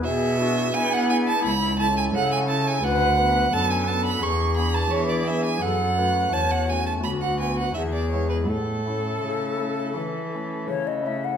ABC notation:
X:1
M:4/4
L:1/16
Q:1/4=85
K:A
V:1 name="Violin"
e4 g f g a b2 a g f g a g | f4 a g a b c'2 b a c d e g | f4 a f g a b f g f e d c B | A12 z4 |]
V:2 name="Flute"
G2 F2 E8 A4 | B2 B2 A4 G4 G4 | A2 B2 c2 z2 F4 G4 | A12 c ^d e f |]
V:3 name="Pipe organ"
z2 [DEG]4 [DEG]2 z2 [CEA]4 [CEA]2 | z2 [B,DB]4 [B,DB]2 z2 [B,DG]4 [B,DG]2 | z2 [A,CF]4 [A,CF]2 z2 [B,F]2 z2 [G,B,E]2 | z2 [A,CE]4 [A,CE]2 z2 [A,CE]4 [A,CE]2 |]
V:4 name="Pipe organ" clef=bass
B,,4 B,4 C,,4 C,4 | D,,4 F,,4 E,,4 E,4 | F,,4 E,,4 D,,4 E,,4 | A,,4 C,4 E,4 C,4 |]
V:5 name="Cello" clef=bass
B,,4 B,4 C,,4 C,4 | D,,4 F,,4 E,,4 E,4 | F,,4 E,,4 D,,4 E,,4 | A,,4 C,4 E,4 C,4 |]